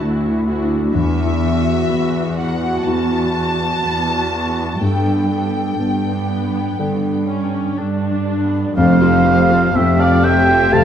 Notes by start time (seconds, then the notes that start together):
Already playing: D2 D3 A3 D4 E4 F#4
0.00 D2 F#4
0.31 E4
0.47 E4 F#4
0.62 D4
0.94 E2 E3 E5
1.25 E4
1.42 B3 F#4
1.58 F#4
1.89 E2 B3 B4
2.21 F#4
2.38 B3 F#4 F#5
2.53 E4
2.86 E2 B3 E4 F#4 A5
3.18 E4
3.34 B3 F#4
3.51 F#4
3.83 E2 B4
4.16 F#4
4.32 B3 F#4
4.48 E4
4.81 G2 B3 A4 G5
5.15 B3
5.30 B3 A4
5.48 D4
5.79 G2 B3 A4
6.13 D4
6.47 B3
6.79 G2 D3 D4 A4
7.12 B3
7.28 C#4
7.44 D4
7.77 G2 D4 A4
8.11 D4
8.44 B3
8.76 F1 F2 A3 G4 C5 F5
9.01 C4 F4 A4
9.25 A3 G4 C5
9.50 C4 F4 A4
9.75 F1 F2 A3 C4 G4 C5 E5 G5
9.99 C4 F4 A4 D5 F5 A5
10.23 A3 G4 C5 E5 G5
10.48 C4 F4 G4 A4
10.72 F1 F2 C3 A3 G4 A4 C5 F5 A5